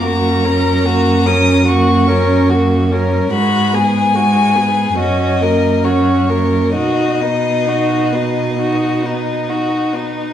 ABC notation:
X:1
M:4/4
L:1/16
Q:1/4=71
K:B
V:1 name="Violin"
a6 d'2 c'4 z4 | b2 g6 d4 c4 | d12- d2 z2 |]
V:2 name="Violin"
F2 A2 F2 A2 F2 A2 F2 A2 | F2 G2 F2 G2 F2 A2 F2 A2 | F2 D2 F2 D2 F2 D2 F2 D2 |]
V:3 name="Viola"
A,2 C2 A,2 C2 A,2 C2 A,2 C2 | G,2 B,2 G,2 B,2 C2 A,2 C2 A,2 | D2 B,2 D2 B,2 D2 B,2 D2 B,2 |]
V:4 name="Cello" clef=bass
F,,16 | G,,8 F,,8 | B,,12- B,,3 z |]